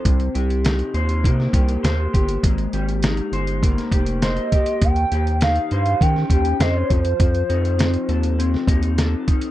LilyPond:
<<
  \new Staff \with { instrumentName = "Soft synth lead" } { \time 4/4 \key f \minor \tempo 4 = 101 r1 | r2. ees''4 | g''4 f''4 g''4 ees''16 des''16 c''8~ | c''2~ c''8 r4. | }
  \new Staff \with { instrumentName = "Clean electric guitar" } { \time 4/4 \key f \minor c8 g'8 ees'8 c''8 bes8 g'8 c''8 g'8 | aes8 g'8 ees'8 c''8 bes8 g'8 c''8 g'8 | ees8 g'8 ees'8 c''8 des'8 g'8 c''8 f8 | f8 ees'8 c'8 a'8 c'8 ees'8 a'8 ees'8 | }
  \new Staff \with { instrumentName = "Analog synth bass" } { \clef bass \time 4/4 \key f \minor c,8 c,4 ees,8 c8 c,8 ees,8 g,,8 | aes,,8 aes,,4 g,,4 f,,4 r8 | ees,8 ees,4 g,8 ees8 ees,8 f,8 f,8 | f,8 f,4 ees,4 ees,4 r8 | }
  \new DrumStaff \with { instrumentName = "Drums" } \drummode { \time 4/4 <hh bd>16 hh16 hh16 hh16 <hh sn>16 hh16 hh16 hh16 <hh bd>16 sn16 <hh bd>16 hh16 <hh sn>8 <hh bd>16 hh16 | <hh bd>16 hh16 hh16 hh16 <hh sn>16 hh16 hh16 hh16 <hh bd>16 <hh sn>16 <hh bd>16 hh16 <hh sn>16 hh16 <hh bd>16 hh16 | <hh bd>16 hh16 hh16 hh16 <hh sn>16 hh16 hh16 hh16 <hh bd>16 sn16 <hh bd>16 hh16 <hh sn>8 <hh bd>16 hh16 | <hh bd>16 hh16 hh16 hh16 <hh sn>16 hh16 hh16 hh16 hh16 sn16 <hh bd>16 hh16 <hh sn>8 <hh bd>16 hh16 | }
>>